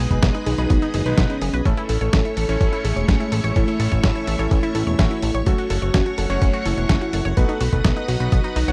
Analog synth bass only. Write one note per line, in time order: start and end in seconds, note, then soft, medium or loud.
0.11 0.19 B1 medium
0.23 0.31 B1 loud
0.46 0.55 B1 loud
0.58 0.67 B1 medium
0.70 0.79 B1 loud
0.94 1.02 F#1 medium
1.06 1.14 B1 medium
1.18 1.26 B1 loud
1.41 1.50 F#1 medium
1.53 1.62 B1 medium
1.65 1.74 A1 loud
1.89 1.98 A1 loud
2.01 2.10 A1 medium
2.13 2.21 A1 loud
2.37 2.45 A1 medium
2.49 2.57 A1 medium
2.61 2.69 A1 loud
2.85 2.93 A1 loud
2.96 3.05 E1 medium
3.08 3.17 A1 loud
3.32 3.40 A1 loud
3.44 3.52 A1 medium
3.56 3.64 A1 loud
3.80 3.88 A1 loud
3.92 4.00 A1 medium
4.04 4.12 A1 loud
4.27 4.36 A1 loud
4.39 4.48 A1 medium
4.51 4.60 A1 loud
4.75 4.83 A1 loud
4.87 4.95 E1 medium
4.99 5.07 A1 loud
5.23 5.31 A1 loud
5.34 5.43 A1 medium
5.46 5.55 F#1 loud
5.70 5.79 F#1 medium
5.82 5.91 F#1 medium
5.94 6.02 F#1 loud
6.18 6.26 F#1 medium
6.30 6.38 F#1 medium
6.42 6.50 F#1 loud
6.66 6.74 F#1 loud
6.77 6.86 E1 medium
6.89 6.98 F#1 loud
7.13 7.22 F#1 medium
7.25 7.33 F#1 medium
7.37 7.45 B1 loud
7.61 7.69 B1 medium
7.73 7.81 B1 medium
7.85 7.93 B1 loud
8.08 8.17 B1 medium
8.20 8.29 B1 medium
8.32 8.41 B1 loud
8.56 8.64 B1 loud
8.68 8.72 B1 medium